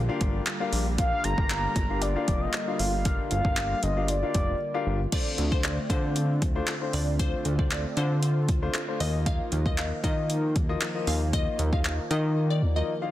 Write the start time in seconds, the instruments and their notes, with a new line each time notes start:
Already playing: analog synth pad D3 G3 A#3 F4
0.09 grand piano D4 F4 G4 A#4 F5
0.21 analog synth bass G1, kick, closed hi-hat
0.46 clap, closed hi-hat
0.60 grand piano D4 F4 G4 A#4 F5
0.73 analog synth bass A#1, open hi-hat
0.98 grand piano D4 F4 G4 A#4 F5, analog synth pad F4, soft synth lead F5, kick, closed hi-hat
1.24 analog synth bass G1, soft synth lead A#5, closed hi-hat
1.38 analog synth bass G1, grand piano D4 F4 G4 A#4 F5, kick
1.50 clap, closed hi-hat
1.76 analog synth bass G1, kick, closed hi-hat
1.90 grand piano D4 F4 G4 A#4 F5
2.02 soft synth lead D5, closed hi-hat
2.16 grand piano D4 F4 G4 A#4 F5
2.28 analog synth bass F1, kick, closed hi-hat
2.41 soft synth lead D#5
2.53 clap, closed hi-hat
2.68 grand piano D4 F4 G4 A#4 F5
2.79 analog synth bass G1, soft synth lead F5, open hi-hat
3.05 grand piano D4 F4 G4 A#4 F5, kick, closed hi-hat
3.31 analog synth bass G1, soft synth lead F5, closed hi-hat
3.45 analog synth bass G1, grand piano D4 F4 G4 A#4 F5, kick
3.57 soft synth lead F5, clap, closed hi-hat
3.83 analog synth bass G1, soft synth lead D#5, closed hi-hat
3.97 grand piano D4 F4 G4 A#4 F5
4.08 soft synth lead D5, closed hi-hat
4.23 grand piano D4 F4 G4 A#4 F5
4.34 analog synth bass F1, kick, closed hi-hat
4.74 grand piano D4 F4 G4 A#4 F5
4.87 analog synth bass G1
5.12 analog synth pad D3 A3 C4 F4, grand piano A3 D4 F4 C5, synth pluck D5, kick, closed hi-hat, crash
5.38 analog synth bass D2, closed hi-hat
5.52 grand piano A3 D4 F4 C5, synth pluck C5, kick
5.64 synth pluck D5, clap, closed hi-hat
5.90 analog synth bass D3, grand piano A3 D4 F4 C5, synth pluck C5, kick, closed hi-hat
6.16 closed hi-hat
6.42 analog synth bass D2, kick, closed hi-hat
6.56 grand piano A3 D4 F4 C5
6.67 clap, closed hi-hat
6.81 grand piano A3 D4 F4 C5
6.93 analog synth bass D2, synth pluck D5, open hi-hat
7.19 grand piano A3 D4 F4 C5, synth pluck C5, kick, closed hi-hat
7.45 analog synth bass D2, closed hi-hat
7.59 grand piano A3 D4 F4 C5, synth pluck D5, kick
7.71 synth pluck D5, clap, closed hi-hat
7.97 analog synth bass D3, grand piano A3 D4 F4 C5, synth pluck C5, closed hi-hat
8.23 closed hi-hat
8.49 analog synth bass D2, kick, closed hi-hat
8.62 grand piano A3 D4 F4 C5
8.74 clap, closed hi-hat
8.88 grand piano A3 D4 F4 C5
9.00 analog synth bass D#2, analog synth pad D#3 F3 A#3, grand piano A#3 D#4 F4 D#5, synth pluck D#5, open hi-hat
9.26 synth pluck F5, kick, closed hi-hat
9.52 analog synth bass D#2, closed hi-hat
9.66 grand piano A#3 D#4 F4 D#5, synth pluck D#5, kick
9.78 synth pluck F5, clap, closed hi-hat
10.04 analog synth bass D#3, grand piano A#3 D#4 F4 D#5, synth pluck D#5, kick, closed hi-hat
10.30 closed hi-hat
10.56 analog synth bass D#2, kick, closed hi-hat
10.69 grand piano A#3 D#4 F4 D#5
10.81 clap, closed hi-hat
10.95 grand piano A#3 D#4 F4 D#5
11.07 analog synth bass D#2, synth pluck F5, open hi-hat
11.33 grand piano A#3 D#4 F4 D#5, synth pluck D#5, kick, closed hi-hat
11.59 analog synth bass D#2, closed hi-hat
11.72 grand piano A#3 D#4 F4 D#5, synth pluck F5, kick
11.85 synth pluck F5, clap, closed hi-hat
12.11 analog synth bass D#3, grand piano A#3 D#4 F4 D#5, synth pluck D#5, closed hi-hat
12.50 synth pluck D5
12.62 analog synth bass D#2
12.76 grand piano A#3 D#4 F4 A#4, synth pluck D#5
13.02 grand piano A#3 D#4 F4 F5